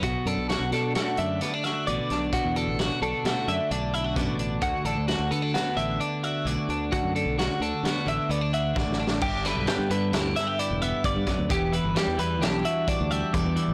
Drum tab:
CC |------------------------------|------------------------------|------------------------------|------------------------------|
HH |x--x--x--x--x--x--x--x--x--x--|x--x--x--x--x--x--x--x--x--x--|x--x--x--x--x--x--x--x--x--x--|x--x--x--x--x--x--x--x--------|
SD |------o--o--o-----o--o-----o--|------o-----o-----------o-----|------o-----o-----------------|------o-----o-----------o-o-o-|
BD |o-----------------------------|o-----------------------o-----|o-----------------------------|o-----------------------o-----|

CC |x-----------------------------|------------------------------|
HH |---x--x--x--x--x--x--x--x--x--|x--x--x--x--x--x--x--x--x--x--|
SD |---o--o-----o--o-----------o--|------o-----o-----------------|
BD |o-----------------------o--o--|o-----------------o-----o-----|